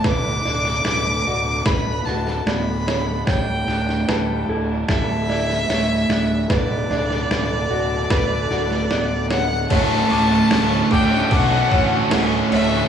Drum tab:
CC |----------------|----------------|----------------|x-x-x-x-x-x-x-x-|
SD |o-ooo---o-ooo-o-|o-ooo---o-ooo-o-|o-ooo---o-ooo-o-|----o-------o---|
BD |o-------o-------|o-------o-------|o-------o-------|o-----o-o-o-----|